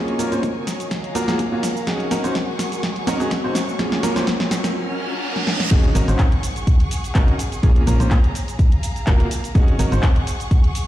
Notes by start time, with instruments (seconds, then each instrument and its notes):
Already playing: grand piano A#3 C#4 F4 G#4, violin section A#4 G#5 C#6, ambient pad C#5 D#5 G#5, riser
0.08 closed hi-hat
0.15 grand piano A#3 C#4 F4 A#4, ambient pad A#4, open hi-hat
0.20 shaker
0.32 grand piano A#3 C#4 F4 C5, closed hi-hat, shaker
0.43 kick, closed hi-hat, shaker
0.67 snare, open hi-hat, shaker
0.80 closed hi-hat, shaker
0.91 ambient pad F#4, violin section G#4 F5 F#5 A#5, kick, snare, closed hi-hat, shaker
1.04 closed hi-hat
1.15 grand piano A#3 F4 F#4 A#4, open hi-hat, shaker
1.28 grand piano A#3 F4 F#4 G#4, snare, closed hi-hat, shaker
1.39 kick, closed hi-hat, shaker
1.52 grand piano A#3 F4 F#4 C#5
1.63 snare, open hi-hat, shaker
1.77 shaker
1.87 grand piano C#4 D#4 F#4 G#4, violin section G#4 C#6, kick, snare, closed hi-hat, shaker
2.00 closed hi-hat
2.11 grand piano C#4 D#4 F#4 A#4, snare, open hi-hat, shaker
2.24 grand piano C#4 D#4 F#4 C5, ambient pad C#5, closed hi-hat, shaker
2.35 kick, snare, closed hi-hat, shaker
2.59 snare, open hi-hat, shaker
2.72 ambient pad D#5, closed hi-hat, shaker
2.83 kick, snare, closed hi-hat, shaker
2.96 closed hi-hat
3.07 grand piano C#4 D#4 F#4 A#4, snare, open hi-hat, shaker
3.20 grand piano C#4 D#4 F#4 G#4, closed hi-hat, shaker
3.31 kick, snare, closed hi-hat, shaker
3.44 grand piano C#4 D#4 F#4 C5
3.55 snare, open hi-hat, shaker
3.69 shaker
3.79 grand piano A#3 C#4 F4 G#4, violin section A#4 G#5, kick, snare, closed hi-hat, shaker
3.92 snare, closed hi-hat
4.03 grand piano A#3 C#4 F4 A#4, snare, open hi-hat, shaker
4.16 grand piano A#3 C#4 F4 C5, snare, closed hi-hat, shaker
4.27 kick, snare, closed hi-hat, shaker
4.40 snare
4.51 snare, open hi-hat, shaker
4.64 snare, closed hi-hat, shaker
4.75 violin section A#4 F#5 G#5 F6, reverse cymbal
5.36 snare
5.47 snare
5.60 snare
5.71 fm bass G#1, grand piano C#4 D#4 F#4 G#4, violin section G#4 F#5 C#6, kick, closed hi-hat, crash, impact, shaker
5.84 closed hi-hat
5.95 fm bass G#1, grand piano C#4 D#4 F#4 A#4, open hi-hat, shaker
6.08 fm bass G#1, grand piano C#4 D#4 F#4 C5, closed hi-hat, shaker
6.19 kick, clap, closed hi-hat, shaker
6.32 closed hi-hat
6.43 open hi-hat, shaker
6.56 closed hi-hat, shaker
6.67 kick, closed hi-hat, shaker
6.80 closed hi-hat
6.91 open hi-hat, shaker
7.04 closed hi-hat, shaker
7.15 fm bass G#1, grand piano C#4 D#4 F#4 A#4, kick, clap, closed hi-hat, shaker
7.28 closed hi-hat
7.39 open hi-hat, shaker
7.52 closed hi-hat, shaker
7.63 fm bass A#1, grand piano A#3 C#4 F4 G#4, violin section C#5 A#5, kick, closed hi-hat, shaker
7.76 closed hi-hat
7.87 fm bass A#1, grand piano A#3 C#4 F4 A#4, open hi-hat, shaker
8.00 fm bass A#1, grand piano A#3 C#4 F4 C5, closed hi-hat, shaker
8.11 kick, clap, closed hi-hat, shaker
8.24 closed hi-hat
8.35 open hi-hat, shaker
8.48 closed hi-hat, shaker
8.59 violin section F5 A#5, kick, closed hi-hat, shaker
8.72 closed hi-hat
8.83 open hi-hat, shaker
8.96 closed hi-hat, shaker
9.07 fm bass F#1, grand piano A#3 F4 F#4 A#4, kick, clap, closed hi-hat, shaker
9.20 closed hi-hat
9.31 open hi-hat, shaker
9.44 closed hi-hat, shaker
9.55 fm bass G#1, grand piano C#4 D#4 F#4 G#4, violin section G#4 F#5 C#6, kick, closed hi-hat, shaker
9.68 closed hi-hat
9.79 fm bass G#1, grand piano C#4 D#4 F#4 A#4, open hi-hat, shaker
9.92 fm bass G#1, grand piano C#4 D#4 F#4 C5, closed hi-hat, shaker
10.03 kick, clap, closed hi-hat, shaker
10.16 closed hi-hat
10.27 open hi-hat, shaker
10.40 closed hi-hat, shaker
10.51 kick, closed hi-hat, shaker
10.64 closed hi-hat
10.75 open hi-hat, shaker